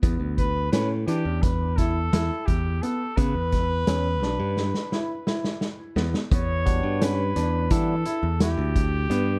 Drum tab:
HH |x-x-x-x-x-x-x-x-x-|x-x-x-------------|x-x-x-x-x-x-x-x-x-|
SD |----o---o-o-o-----|--o-o-o-ooo-ooo-oo|----o-o-o---o-----|
BD |o-o-----o-o---o---|o-o---------------|o-o-----o-----o---|